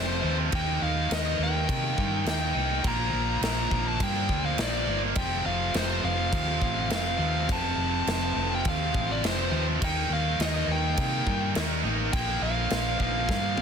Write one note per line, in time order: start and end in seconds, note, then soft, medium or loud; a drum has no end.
0.00 0.20 F1 medium
0.00 0.21 F2 medium
0.00 0.50 F2 medium
0.00 0.21 C3 loud
0.00 0.51 C3 medium
0.00 0.21 F3 medium
0.00 0.52 F3 medium
0.00 0.22 A3 loud
0.00 0.22 C4 loud
0.00 0.22 F4 medium
0.00 0.48 F4 medium
0.00 0.36 C5 medium
0.00 0.48 C5 medium
0.00 0.48 G5 medium
0.23 0.50 D#2 medium
0.23 0.51 F2 medium
0.23 0.51 C3 medium
0.23 0.51 F3 medium
0.23 0.51 A3 medium
0.23 0.51 C4 medium
0.23 0.50 F4 medium
0.51 0.79 D#2 loud
0.51 2.53 D#3 medium
0.51 1.38 D#3 medium
0.51 2.53 G3 loud
0.51 2.54 A#3 loud
0.51 1.40 A#3 loud
0.51 2.81 D#4 medium
0.51 2.54 D#4 loud
0.51 1.38 D#4 loud
0.51 0.81 G5 loud
0.51 kick loud
0.51 crash medium
0.82 1.08 D#2 loud
0.82 1.12 F5 loud
1.10 1.37 D#2 medium
1.10 1.42 D#5 loud
1.10 snare loud
1.10 crash medium
1.39 1.65 D#2 medium
1.39 2.24 D#3 medium
1.39 2.25 A#3 medium
1.39 2.24 D#4 medium
1.43 2.28 G5 loud
1.69 1.95 C3 loud
1.69 kick loud
1.69 crash medium
1.98 2.24 G2 medium
1.98 kick medium
2.25 2.52 D#2 medium
2.25 2.82 D#3 medium
2.25 2.83 A#3 medium
2.25 2.83 D#4 medium
2.25 snare loud
2.25 crash medium
2.29 2.87 G5 loud
2.55 2.81 C2 medium
2.55 2.83 D#3 medium
2.55 2.83 G3 medium
2.55 2.83 A#3 medium
2.55 2.82 D#4 medium
2.83 3.10 A#1 loud
2.83 3.69 A#2 loud
2.83 4.85 A#2 medium
2.83 3.71 F3 loud
2.83 4.88 F3 medium
2.83 5.13 A#3 medium
2.83 4.86 A#3 loud
2.83 3.69 A#3 loud
2.83 4.86 D4 loud
2.83 kick loud
2.83 crash medium
2.88 3.40 A#5 loud
3.13 3.39 A#1 medium
3.41 3.68 A#1 medium
3.41 3.88 A#5 loud
3.41 snare loud
3.41 crash medium
3.71 3.98 A#1 medium
3.71 4.56 A#2 medium
3.71 4.58 F3 medium
3.71 4.56 A#3 medium
3.71 kick medium
3.88 4.02 A5 loud
4.00 4.27 G2 loud
4.00 4.45 G5 loud
4.00 kick loud
4.00 crash medium
4.29 4.56 D2 medium
4.29 kick medium
4.46 4.60 F5 loud
4.57 4.84 A#1 medium
4.57 5.14 A#2 medium
4.57 5.17 F3 medium
4.57 5.15 A#3 medium
4.57 snare loud
4.57 crash medium
4.62 5.00 D5 loud
4.87 5.13 G1 medium
4.87 5.15 A#2 medium
4.87 5.16 F3 medium
4.87 5.15 A#3 medium
4.87 5.14 D4 medium
5.15 5.43 F1 loud
5.15 7.17 F2 medium
5.15 6.05 F2 loud
5.15 7.17 C3 loud
5.15 6.02 C3 medium
5.15 7.18 F3 medium
5.15 6.02 F3 loud
5.15 7.17 A3 loud
5.15 7.17 C4 loud
5.15 9.77 F4 medium
5.15 5.46 G5 loud
5.15 kick loud
5.15 crash medium
5.45 5.72 F1 medium
5.45 5.76 F5 loud
5.74 6.01 F1 medium
5.74 6.02 C5 medium
5.74 snare loud
5.74 crash medium
6.03 6.30 F1 medium
6.03 6.90 F2 medium
6.03 6.89 C3 medium
6.03 6.88 F3 medium
6.03 6.90 F5 loud
6.33 6.59 D#2 loud
6.33 kick loud
6.33 crash medium
6.62 6.88 A1 medium
6.62 kick medium
6.89 7.16 F1 medium
6.89 7.47 F2 medium
6.89 7.48 C3 medium
6.89 7.51 F5 medium
6.89 snare loud
6.89 crash medium
6.93 7.48 F3 medium
7.18 7.45 D#2 medium
7.18 7.47 F2 medium
7.18 7.47 C3 medium
7.18 7.46 F3 medium
7.18 7.46 A3 medium
7.18 7.46 C4 medium
7.48 7.75 F1 loud
7.48 9.50 F2 medium
7.48 8.34 F2 medium
7.48 9.50 C3 medium
7.48 8.35 C3 loud
7.48 9.51 F3 medium
7.48 9.50 A3 medium
7.48 9.50 C4 loud
7.48 kick loud
7.48 crash medium
7.52 8.35 F3 loud
7.52 8.09 A5 loud
7.77 8.04 F1 loud
8.07 8.33 F1 loud
8.07 8.53 A5 loud
8.07 snare loud
8.07 crash medium
8.36 8.62 F1 medium
8.36 9.21 F2 medium
8.36 9.22 C3 medium
8.36 9.21 F3 medium
8.55 8.67 G5 medium
8.65 8.92 D#2 loud
8.65 kick loud
8.65 crash medium
8.69 9.12 F5 loud
8.94 9.21 A1 medium
8.94 kick medium
9.12 9.25 D5 medium
9.23 9.49 F1 medium
9.23 9.79 F2 medium
9.23 9.80 C3 medium
9.23 9.81 F3 medium
9.23 snare loud
9.23 crash medium
9.27 9.66 C5 medium
9.51 9.78 D#2 medium
9.51 9.80 F2 medium
9.51 9.79 C3 medium
9.51 9.79 F3 medium
9.51 9.79 A3 medium
9.51 9.79 C4 medium
9.80 10.08 D#2 loud
9.80 11.81 D#3 loud
9.80 10.66 D#3 loud
9.80 11.82 G3 loud
9.80 11.82 A#3 loud
9.80 10.69 A#3 loud
9.80 11.82 D#4 loud
9.80 12.11 D#4 medium
9.80 kick loud
9.80 crash medium
9.84 10.66 D#4 loud
9.84 10.12 G5 loud
10.10 10.36 D#2 medium
10.14 10.39 F5 medium
10.39 10.65 D#2 medium
10.39 10.70 D#5 medium
10.39 snare loud
10.39 crash medium
10.67 10.94 D#2 medium
10.67 11.54 D#3 medium
10.67 11.54 A#3 medium
10.67 11.53 D#4 medium
10.72 11.53 G5 medium
10.97 11.24 C3 loud
10.97 kick loud
10.97 crash medium
11.27 11.53 G2 medium
11.27 kick medium
11.55 11.81 D#2 medium
11.55 12.11 D#3 medium
11.55 12.12 A#3 medium
11.55 12.13 D#4 medium
11.55 snare loud
11.55 crash medium
11.83 12.10 A1 medium
11.83 12.11 D#3 medium
11.83 12.11 G3 medium
11.83 12.11 A#3 medium
11.83 12.11 D#4 medium
12.11 12.40 A#1 loud
12.11 13.62 A#2 medium
12.11 12.98 A#2 loud
12.11 13.62 D3 loud
12.11 13.62 F3 loud
12.11 12.98 F3 loud
12.11 13.62 A#3 medium
12.11 13.62 A#3 loud
12.11 13.62 D4 loud
12.11 13.62 F4 medium
12.11 12.43 G5 loud
12.11 kick loud
12.11 crash medium
12.15 12.98 A#3 loud
12.41 12.68 A#1 loud
12.41 13.01 F5 loud
12.70 12.97 A#1 medium
12.70 snare loud
12.70 crash medium
12.99 13.26 A#1 medium
12.99 13.62 A#2 medium
12.99 13.62 F3 medium
12.99 13.62 A#3 medium
12.99 13.62 F5 medium
12.99 kick medium
13.29 13.55 G2 medium
13.29 kick loud
13.29 snare medium
13.58 13.62 D2 medium
13.58 high tom medium